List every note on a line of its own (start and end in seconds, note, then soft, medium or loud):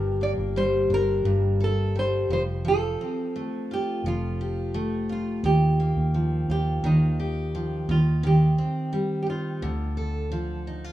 0.00 0.34 G1 loud
0.00 1.24 G2 medium
0.00 0.56 G3 medium
0.00 1.60 G4 medium
0.00 0.23 A#4 medium
0.21 2.37 A#3 medium
0.21 0.32 D5 loud
0.37 0.86 G1 loud
0.56 1.95 G3 medium
0.56 0.93 C5 loud
0.90 1.22 G1 loud
0.90 2.37 D4 medium
0.94 1.64 A#4 loud
1.24 2.26 G1 medium
1.24 2.37 G2 medium
1.60 4.40 A4 medium
1.60 1.98 A4 loud
1.95 2.68 G3 medium
1.95 2.30 C5 loud
2.29 2.95 F1 loud
2.29 2.64 F3 medium
2.29 2.42 C5 loud
2.65 4.06 F3 medium
2.65 3.73 A4 loud
3.01 5.51 C4 medium
3.36 4.73 A3 medium
3.71 5.09 F4 medium
3.71 4.07 G4 loud
4.04 5.40 F1 loud
4.04 5.43 F3 medium
4.04 5.11 F4 medium
4.41 6.17 G4 medium
4.74 5.51 A3 medium
5.09 6.49 F4 medium
5.09 5.43 F4 medium
5.43 5.92 D#2 loud
5.43 6.83 D#3 medium
5.43 6.50 G4 loud
5.80 7.96 A#3 medium
5.97 6.45 D#2 medium
6.14 7.54 F3 medium
6.48 6.81 D#2 loud
6.48 7.96 F4 medium
6.48 6.86 G4 medium
6.83 7.84 D#2 loud
6.83 7.88 D#3 medium
6.83 7.93 D#4 medium
7.20 7.96 G4 medium
7.55 7.96 F3 medium
7.89 8.54 D#2 loud
7.89 8.22 D#3 medium
7.89 8.25 F4 medium
8.23 9.62 D#3 medium
8.23 9.21 G4 loud
8.58 9.70 C4 medium
8.93 9.70 G3 medium
9.22 9.29 G4 medium
9.27 9.69 D#4 medium
9.27 10.65 F4 medium
9.62 10.92 D2 medium
9.62 10.92 D3 medium
9.97 10.92 A4 medium
10.32 10.92 F3 medium
10.67 10.84 D#4 medium
10.84 10.92 F4 medium